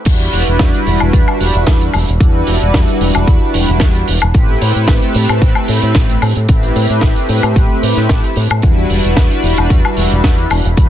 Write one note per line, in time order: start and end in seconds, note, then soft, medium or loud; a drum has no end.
0.05 0.27 E2 loud
0.05 0.44 G3 medium
0.05 0.44 D4 medium
0.05 0.44 E4 medium
0.05 0.44 F#4 medium
0.05 0.44 B4 medium
0.05 kick loud
0.05 closed hi-hat medium
0.05 crash loud
0.05 shaker soft
0.33 0.44 E1 medium
0.33 open hi-hat loud
0.33 shaker medium
0.47 0.57 E1 medium
0.47 0.83 G3 medium
0.47 0.83 D4 medium
0.47 0.84 E4 medium
0.47 0.84 F#4 medium
0.47 0.84 B4 loud
0.47 closed hi-hat medium
0.47 shaker medium
0.59 0.71 E2 medium
0.59 kick loud
0.59 snare loud
0.59 closed hi-hat medium
0.59 shaker medium
0.75 closed hi-hat medium
0.86 0.97 E1 loud
0.86 1.24 G3 medium
0.86 1.24 D4 medium
0.86 1.24 E4 medium
0.86 1.24 F#4 medium
0.86 1.25 B4 medium
0.86 open hi-hat medium
0.86 shaker medium
1.00 1.10 E1 medium
1.00 closed hi-hat medium
1.00 high woodblock medium
1.00 shaker medium
1.13 1.24 E2 loud
1.13 kick loud
1.13 closed hi-hat medium
1.13 shaker medium
1.27 1.64 G3 medium
1.27 1.64 D4 medium
1.27 1.64 E4 medium
1.27 1.64 F#4 medium
1.27 1.64 B4 medium
1.27 high woodblock medium
1.40 1.51 E1 medium
1.40 open hi-hat loud
1.40 shaker medium
1.54 1.64 E1 medium
1.54 closed hi-hat medium
1.54 shaker medium
1.66 1.88 E2 medium
1.66 1.83 G3 medium
1.66 1.83 D4 medium
1.66 1.83 E4 medium
1.66 1.83 F#4 medium
1.66 1.83 B4 medium
1.66 kick loud
1.66 snare loud
1.66 closed hi-hat medium
1.66 shaker medium
1.81 closed hi-hat medium
1.94 2.05 E1 loud
1.94 open hi-hat medium
1.94 high woodblock medium
1.94 shaker medium
2.08 2.18 E1 medium
2.08 closed hi-hat medium
2.08 shaker medium
2.20 2.41 E2 loud
2.20 2.58 G3 medium
2.20 2.58 D4 medium
2.20 2.58 E4 medium
2.20 2.58 F#4 medium
2.20 2.58 B4 medium
2.20 kick loud
2.20 closed hi-hat medium
2.20 shaker medium
2.47 2.58 E1 loud
2.47 open hi-hat loud
2.47 shaker medium
2.61 2.71 E1 medium
2.61 2.98 G3 medium
2.61 2.98 D4 medium
2.61 2.98 E4 medium
2.61 2.98 F#4 medium
2.61 2.98 B4 loud
2.61 closed hi-hat medium
2.61 shaker medium
2.74 2.85 E2 medium
2.74 kick loud
2.74 snare loud
2.74 closed hi-hat medium
2.74 shaker medium
2.88 closed hi-hat medium
3.00 3.12 E1 loud
3.00 3.38 G3 medium
3.00 3.38 D4 medium
3.00 3.38 E4 medium
3.00 3.39 F#4 medium
3.00 3.39 B4 medium
3.00 open hi-hat loud
3.00 shaker medium
3.15 3.25 E1 medium
3.15 closed hi-hat medium
3.15 high woodblock medium
3.15 shaker medium
3.27 3.38 E2 loud
3.27 kick loud
3.27 closed hi-hat medium
3.27 shaker soft
3.41 3.78 G3 medium
3.41 3.78 D4 medium
3.41 3.78 E4 medium
3.41 3.78 F#4 medium
3.41 3.78 B4 medium
3.54 3.65 E1 medium
3.54 open hi-hat loud
3.54 shaker medium
3.68 3.78 E1 medium
3.68 closed hi-hat medium
3.68 shaker medium
3.80 4.02 E2 medium
3.80 3.97 G3 medium
3.80 3.97 D4 medium
3.80 3.97 E4 medium
3.80 3.98 F#4 medium
3.80 3.98 B4 medium
3.80 kick loud
3.80 snare loud
3.80 closed hi-hat medium
3.80 shaker soft
3.95 closed hi-hat medium
4.08 4.19 E1 loud
4.08 open hi-hat loud
4.08 shaker medium
4.22 4.32 E1 medium
4.22 closed hi-hat medium
4.22 high woodblock medium
4.22 shaker medium
4.34 4.55 A1 loud
4.34 4.72 A3 medium
4.34 4.72 C4 medium
4.34 4.72 E4 medium
4.34 4.73 G4 medium
4.34 4.73 B4 loud
4.34 kick loud
4.34 closed hi-hat medium
4.34 shaker soft
4.62 4.72 A2 loud
4.62 open hi-hat loud
4.62 shaker medium
4.75 4.85 A2 medium
4.75 5.12 A3 medium
4.75 5.12 C4 medium
4.75 5.12 E4 medium
4.75 5.12 G4 medium
4.75 5.12 B4 loud
4.75 closed hi-hat medium
4.75 shaker medium
4.88 4.99 A1 medium
4.88 kick loud
4.88 snare loud
4.88 closed hi-hat medium
4.88 shaker medium
5.02 closed hi-hat medium
5.14 5.26 A2 loud
5.14 5.52 A3 medium
5.14 5.53 C4 medium
5.14 5.53 E4 medium
5.14 5.53 G4 medium
5.14 5.53 B4 medium
5.14 open hi-hat loud
5.14 shaker medium
5.29 5.39 A2 medium
5.29 closed hi-hat medium
5.29 high woodblock medium
5.29 shaker medium
5.42 5.53 A1 loud
5.42 kick loud
5.42 closed hi-hat medium
5.42 shaker medium
5.55 5.92 A3 medium
5.55 5.92 C4 medium
5.55 5.93 E4 medium
5.55 5.93 G4 medium
5.55 5.93 B4 medium
5.55 high woodblock medium
5.68 5.79 A2 medium
5.68 open hi-hat loud
5.68 shaker medium
5.82 5.92 A2 medium
5.82 closed hi-hat medium
5.82 shaker medium
5.95 6.16 A1 medium
5.95 6.11 A3 medium
5.95 6.12 C4 medium
5.95 6.12 E4 medium
5.95 6.12 G4 medium
5.95 6.12 B4 medium
5.95 kick loud
5.95 snare loud
5.95 closed hi-hat medium
5.95 shaker soft
6.10 closed hi-hat medium
6.22 6.33 A2 loud
6.22 open hi-hat loud
6.22 high woodblock medium
6.22 shaker medium
6.36 6.46 A2 medium
6.36 closed hi-hat medium
6.36 shaker medium
6.48 6.70 A1 loud
6.48 6.86 A3 medium
6.48 6.86 C4 medium
6.48 6.87 E4 medium
6.48 6.87 G4 medium
6.48 6.87 B4 medium
6.48 kick loud
6.48 closed hi-hat medium
6.48 shaker medium
6.63 closed hi-hat medium
6.76 6.86 A2 loud
6.76 open hi-hat loud
6.76 shaker medium
6.90 6.99 A2 medium
6.90 7.26 A3 loud
6.90 7.26 C4 medium
6.90 7.26 E4 medium
6.90 7.26 G4 medium
6.90 7.26 B4 loud
6.90 closed hi-hat medium
6.90 shaker medium
7.01 7.13 A1 medium
7.01 kick loud
7.01 snare loud
7.01 closed hi-hat medium
7.01 shaker soft
7.16 closed hi-hat medium
7.29 7.40 A2 medium
7.29 7.67 A3 medium
7.29 7.67 C4 medium
7.29 7.67 E4 medium
7.29 7.67 G4 medium
7.29 7.67 B4 medium
7.29 open hi-hat medium
7.29 shaker medium
7.43 7.53 A2 medium
7.43 closed hi-hat medium
7.43 high woodblock medium
7.43 shaker medium
7.56 7.67 A1 loud
7.56 kick loud
7.56 closed hi-hat medium
7.56 shaker medium
7.70 8.07 A3 medium
7.70 8.07 C4 medium
7.70 8.07 E4 medium
7.70 8.07 G4 medium
7.70 8.07 B4 medium
7.83 7.94 A2 medium
7.83 open hi-hat loud
7.83 shaker medium
7.96 8.07 A2 medium
7.96 snare soft
7.96 closed hi-hat medium
7.96 shaker medium
8.09 8.21 A1 medium
8.09 8.26 A3 medium
8.09 8.26 C4 medium
8.09 8.26 E4 medium
8.09 8.26 G4 medium
8.09 8.26 B4 medium
8.09 kick loud
8.09 snare loud
8.09 closed hi-hat medium
8.09 shaker medium
8.24 closed hi-hat medium
8.36 8.47 A2 medium
8.36 open hi-hat medium
8.36 shaker medium
8.50 8.60 A2 medium
8.50 closed hi-hat medium
8.50 high woodblock medium
8.50 shaker medium
8.62 8.84 E2 loud
8.62 9.01 G3 medium
8.62 9.01 D4 medium
8.62 9.01 E4 medium
8.62 9.01 F#4 medium
8.62 9.01 B4 medium
8.62 kick loud
8.62 closed hi-hat medium
8.62 shaker medium
8.90 9.01 E1 loud
8.90 open hi-hat loud
8.90 shaker medium
9.04 9.14 E1 medium
9.04 9.40 G3 medium
9.04 9.40 D4 medium
9.04 9.40 E4 medium
9.04 9.41 F#4 medium
9.04 9.41 B4 loud
9.04 closed hi-hat medium
9.04 shaker medium
9.17 9.28 E2 medium
9.17 kick loud
9.17 snare loud
9.17 closed hi-hat medium
9.17 shaker soft
9.31 closed hi-hat medium
9.43 9.54 E1 loud
9.43 9.81 G3 medium
9.43 9.81 D4 medium
9.43 9.81 E4 medium
9.43 9.81 F#4 medium
9.43 9.81 B4 medium
9.43 open hi-hat medium
9.43 shaker medium
9.57 9.67 E1 medium
9.57 closed hi-hat medium
9.57 high woodblock medium
9.57 shaker medium
9.70 9.81 E2 loud
9.70 kick loud
9.70 closed hi-hat medium
9.70 shaker soft
9.84 10.21 G3 medium
9.84 10.21 D4 medium
9.84 10.21 E4 medium
9.84 10.21 F#4 medium
9.84 10.21 B4 medium
9.84 high woodblock medium
9.97 10.08 E1 medium
9.97 open hi-hat loud
9.97 shaker medium
10.11 10.21 E1 medium
10.11 closed hi-hat medium
10.11 shaker medium
10.23 10.45 E2 medium
10.23 10.40 G3 medium
10.23 10.40 D4 medium
10.23 10.40 E4 medium
10.23 10.40 F#4 medium
10.23 10.40 B4 medium
10.23 kick loud
10.23 snare loud
10.23 closed hi-hat medium
10.23 shaker medium
10.38 closed hi-hat medium
10.50 10.61 E1 loud
10.50 open hi-hat loud
10.50 high woodblock medium
10.50 shaker medium
10.65 10.74 E1 medium
10.65 closed hi-hat medium
10.65 shaker medium
10.77 10.89 E2 loud
10.77 10.89 G3 medium
10.77 10.89 D4 medium
10.77 10.89 E4 medium
10.77 10.89 F#4 medium
10.77 10.89 B4 medium
10.77 kick loud
10.77 closed hi-hat medium
10.77 shaker medium